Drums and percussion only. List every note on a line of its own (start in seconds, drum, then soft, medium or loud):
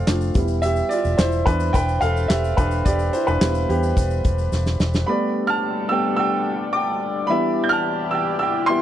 0.07 snare medium
0.07 clap medium
0.07 closed hi-hat medium
0.07 shaker medium
0.21 shaker medium
0.34 kick loud
0.34 closed hi-hat medium
0.34 shaker soft
0.48 shaker soft
0.63 closed hi-hat medium
0.63 shaker medium
0.76 shaker soft
0.91 closed hi-hat medium
0.91 shaker soft
1.04 shaker soft
1.19 snare loud
1.19 clap medium
1.19 closed hi-hat medium
1.19 shaker medium
1.32 shaker soft
1.47 kick medium
1.47 closed hi-hat medium
1.60 shaker medium
1.74 kick medium
1.74 closed hi-hat medium
1.74 shaker medium
1.88 shaker soft
2.02 closed hi-hat medium
2.02 shaker soft
2.17 shaker soft
2.30 snare medium
2.30 clap medium
2.30 closed hi-hat medium
2.30 shaker medium
2.44 shaker medium
2.58 kick medium
2.58 closed hi-hat medium
2.58 shaker soft
2.71 shaker soft
2.86 kick medium
2.86 closed hi-hat medium
2.86 shaker medium
2.99 shaker soft
3.13 closed hi-hat medium
3.13 shaker soft
3.27 shaker soft
3.41 snare loud
3.41 clap medium
3.41 closed hi-hat medium
3.41 shaker medium
3.55 shaker soft
3.70 closed hi-hat medium
3.83 shaker medium
3.97 kick medium
3.97 closed hi-hat medium
3.97 shaker medium
4.10 shaker soft
4.24 kick medium
4.24 closed hi-hat medium
4.24 shaker soft
4.38 shaker soft
4.53 snare medium
4.53 shaker medium
4.66 snare medium
4.66 shaker soft
4.80 snare medium
4.80 shaker soft
4.94 snare medium
4.94 shaker soft